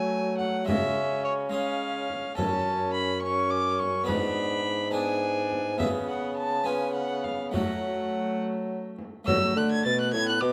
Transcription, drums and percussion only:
0.40 frame drum
0.68 frame drum
2.10 frame drum
2.38 frame drum
3.80 frame drum
4.08 frame drum
5.52 frame drum
5.80 frame drum
7.24 frame drum
7.54 frame drum
8.99 frame drum
9.28 frame drum

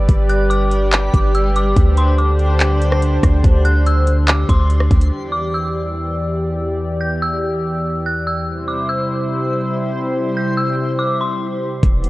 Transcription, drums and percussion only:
0.09 kick, closed hi-hat
0.29 closed hi-hat
0.51 closed hi-hat
0.71 closed hi-hat
0.92 clap, closed hi-hat
1.14 kick, closed hi-hat
1.34 closed hi-hat
1.56 closed hi-hat
1.76 kick, closed hi-hat
1.97 closed hi-hat
2.18 closed hi-hat
2.39 closed hi-hat
2.60 clap, closed hi-hat
2.82 closed hi-hat
2.92 cross-stick
3.02 closed hi-hat
3.23 kick, cross-stick, closed hi-hat
3.44 kick, closed hi-hat
3.65 closed hi-hat
3.86 closed hi-hat
4.07 closed hi-hat
4.28 clap, closed hi-hat
4.49 kick, closed hi-hat
4.70 closed hi-hat
4.81 cross-stick
4.91 kick, closed hi-hat
5.02 closed hi-hat
11.83 kick, closed hi-hat
12.04 closed hi-hat

